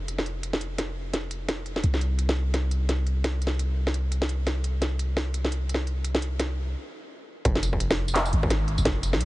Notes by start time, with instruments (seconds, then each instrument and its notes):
Already playing: 808-style bass F1
0.08 closed hi-hat
0.18 snare
0.26 closed hi-hat
0.43 closed hi-hat
0.53 snare
0.61 closed hi-hat
0.78 snare, closed hi-hat
1.13 snare, closed hi-hat
1.31 closed hi-hat
1.49 snare, closed hi-hat
1.66 closed hi-hat
1.76 snare
1.84 808-style bass C2, closed hi-hat
1.94 snare
2.01 closed hi-hat
2.19 closed hi-hat
2.29 snare
2.54 snare, closed hi-hat
2.71 closed hi-hat
2.89 snare, closed hi-hat
3.07 closed hi-hat
3.24 snare, closed hi-hat
3.42 closed hi-hat
3.47 snare
3.59 closed hi-hat
3.87 snare
3.94 closed hi-hat
4.12 closed hi-hat
4.22 snare
4.29 closed hi-hat
4.47 snare, closed hi-hat
4.64 closed hi-hat
4.82 snare, closed hi-hat
4.99 closed hi-hat
5.17 snare
5.34 closed hi-hat
5.45 snare
5.52 closed hi-hat
5.69 closed hi-hat
5.74 snare
5.87 closed hi-hat
6.04 closed hi-hat
6.15 snare
6.22 closed hi-hat
6.39 snare, closed hi-hat
7.45 808-style bass F1, kick, closed hi-hat
7.55 snare
7.63 closed hi-hat, tambourine
7.73 kick
7.80 closed hi-hat
7.91 snare
8.08 tambourine
8.16 clap, snare, closed hi-hat
8.26 tambourine
8.33 808-style bass G#1, closed hi-hat
8.43 kick
8.50 snare, closed hi-hat
8.68 closed hi-hat
8.78 808-style bass F1, tambourine
8.85 808-style bass F1, kick, snare, closed hi-hat
9.03 closed hi-hat, tambourine
9.13 808-style bass C2, snare
9.21 closed hi-hat